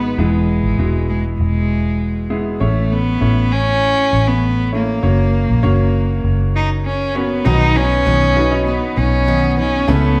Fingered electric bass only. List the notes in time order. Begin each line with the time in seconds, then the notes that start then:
Already playing: G#1
0.18 E1
0.64 G#1
0.79 E1
1.40 E1
2.61 A1
3.22 A1
4.13 A1
5.03 F#1
5.49 A#1
5.64 F#1
6.24 F#1
7.46 B1
8.06 B1
8.97 B1
9.88 C#2